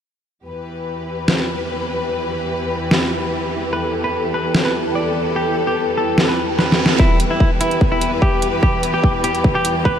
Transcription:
0.46 E2 E3 E4 G4 B4
0.55 G4 B4
1.28 snare
1.40 G5
2.91 snare
3.73 A4 B4
4.04 B4
4.34 B4
4.55 snare
4.65 B4
4.95 D5
5.36 G4
5.67 G4
5.97 A4
6.18 snare, reverse cymbal
6.29 B4
6.59 B4, snare
6.72 snare
6.86 snare
6.99 E2 E3 E4 G4 B4, kick, riser
7.20 closed hi-hat
7.31 E4
7.40 kick
7.61 E4, closed hi-hat
7.71 closed hi-hat
7.81 kick
7.92 E4
8.01 closed hi-hat
8.22 G4, kick
8.42 closed hi-hat
8.63 G4, kick
8.83 closed hi-hat
8.94 G4
9.04 kick
9.24 G4, closed hi-hat
9.35 closed hi-hat
9.44 kick
9.55 G4
9.65 closed hi-hat
9.85 B4, kick

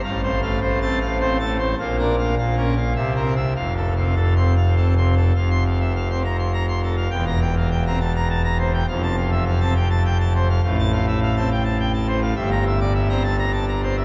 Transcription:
0.03 A1 A2 F5
0.23 C5
0.42 A3 F5
0.61 C5
0.82 C4 A5
1.01 F5
1.20 C4 C5
1.40 A3 A5
1.59 C5
1.79 A#1 A#2 F5
1.99 D4 A#4
2.18 F5
2.37 A#1 A#2 F5
2.57 C#4 A#4
2.76 F5
2.95 C2 C3 E5
3.16 C4 A#4
3.36 E5
3.56 F1 F2 F5
3.76 A4
3.97 C3 F5
4.16 A4
4.37 C4 C6
4.57 F5
4.76 C4 A4
4.97 C3 C6
5.15 A4
5.35 F1 F2 F5
5.50 C6
5.66 F5
5.80 E5
5.95 F5
6.10 C4 C6
6.24 A#5
6.39 C6
6.53 A#5
6.68 C6
6.83 A4
6.97 F5
7.10 E1 E2 G5
7.27 A#5
7.42 G5
7.56 F5
7.71 G5
7.86 C4 A#5
8.00 A5
8.16 A#5
8.30 A5
8.44 A#5
8.59 C5
8.74 G5
8.88 F1 F2 F5
9.03 A5
9.17 F5
9.32 E5
9.46 F5
9.61 C4 A5
9.76 G5
9.90 A5
10.05 G5
10.20 A5
10.35 C5
10.49 F5
10.63 A1 A2 F5
10.79 A5
10.93 F5
11.08 E5
11.23 F5
11.37 C4 A5
11.51 G5
11.64 A5
11.80 G5
11.94 A5
12.08 C5
12.22 F5
12.35 G1 G2 E5
12.51 A#5
12.67 E5
12.80 D5
12.95 E5
13.09 C4 A#5
13.24 A5
13.38 A#5
13.52 A5
13.68 A#5
13.83 C5
13.97 E5

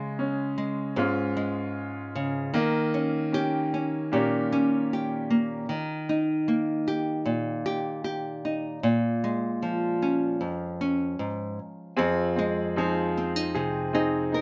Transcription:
Already playing: C#3 G#3 C#4
0.19 C#4
0.58 G#3
0.96 G#2 G#3 C#4 F4
1.37 G#3
2.15 C#3
2.54 D#3 A#3
2.94 C#4
3.33 C#4 G4
3.74 C#4
4.12 A#2 A#3 C#4 G4
4.52 C#4
4.93 G4
5.30 A#3
5.69 D#3
6.09 D#4
6.48 A#3
6.88 G4
7.25 A#2
7.66 G4
8.04 G4
8.45 D#4
8.83 A#2
9.24 G#3
9.62 F3
10.02 C#4
10.41 F2
10.81 C#4
11.19 G#2
11.97 F2 C4 G#4
12.36 G#3 C4
12.76 F3 C4 D#4 G#4
13.18 C4
13.36 D#4
13.55 C3 G#4
13.93 C4 D#4 G#4
14.32 D#4 A#4

